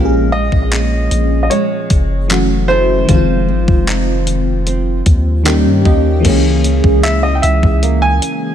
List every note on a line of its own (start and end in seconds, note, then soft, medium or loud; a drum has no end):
0.00 0.50 A#1 loud
0.00 2.38 A#2 medium
0.00 2.24 F3 medium
0.00 0.32 G#3 medium
0.00 2.25 G#3 medium
0.00 2.26 A#3 medium
0.00 2.28 C#4 medium
0.00 2.33 F4 medium
0.00 0.34 A#4 medium
0.05 2.32 G#4 medium
0.32 1.50 G#3 medium
0.32 1.41 D#5 loud
0.52 1.09 A#1 medium
0.52 kick medium
0.72 2.38 C#4 medium
0.72 clap loud
0.72 closed hi-hat medium
1.11 1.49 A#1 loud
1.11 closed hi-hat medium
1.43 1.50 D#5 medium
1.50 2.29 G#3 medium
1.50 2.25 C#5 medium
1.50 closed hi-hat medium
1.90 3.05 F#1 medium
1.90 kick medium
1.90 closed hi-hat medium
2.28 3.08 E3 medium
2.28 3.08 F#3 medium
2.28 3.09 A3 medium
2.28 3.10 C#4 medium
2.28 clap loud
2.28 closed hi-hat medium
2.33 3.10 F#4 medium
2.68 3.17 C#4 medium
2.68 3.17 E4 medium
2.68 3.17 A4 medium
2.68 4.23 C5 loud
3.05 3.50 F1 loud
3.05 5.40 D#3 medium
3.05 5.41 F3 medium
3.05 5.45 F3 medium
3.05 kick loud
3.05 closed hi-hat medium
3.10 5.42 G#3 medium
3.10 5.43 C4 medium
3.14 5.44 F4 medium
3.48 3.67 G#1 medium
3.48 4.65 C4 medium
3.68 5.02 F1 loud
3.68 kick medium
3.87 5.54 D#4 medium
3.87 clap loud
3.87 closed hi-hat medium
4.27 closed hi-hat medium
4.67 5.54 C4 medium
4.67 closed hi-hat medium
5.06 5.67 D#2 loud
5.06 kick medium
5.06 closed hi-hat medium
5.44 6.24 D#3 medium
5.44 6.32 D#3 medium
5.44 6.24 G3 medium
5.44 6.24 A#3 medium
5.44 6.25 C#4 medium
5.44 5.83 G5 medium
5.44 clap loud
5.44 closed hi-hat medium
5.48 6.26 G4 medium
5.66 5.84 G2 medium
5.85 6.23 D#2 loud
5.85 7.07 A#3 medium
5.85 7.03 C#4 medium
5.85 6.33 G4 medium
5.85 6.22 D#5 medium
5.85 kick medium
6.20 8.55 E3 medium
6.20 8.55 G#3 medium
6.24 6.82 C#2 loud
6.24 8.55 C#3 medium
6.24 8.55 A#3 medium
6.24 8.55 C#4 medium
6.24 kick loud
6.24 closed hi-hat medium
6.24 crash medium
6.29 8.55 G#4 medium
6.64 closed hi-hat medium
6.84 7.41 C#2 medium
6.84 kick medium
7.03 8.55 E4 medium
7.03 7.24 E5 medium
7.03 clap loud
7.03 closed hi-hat medium
7.23 7.36 D#5 medium
7.35 7.43 G5 medium
7.42 7.62 C#2 medium
7.42 7.98 E5 medium
7.42 closed hi-hat medium
7.63 8.20 C#2 loud
7.63 kick medium
7.83 8.55 A#3 medium
7.83 closed hi-hat medium
8.02 8.55 G#5 loud
8.22 closed hi-hat medium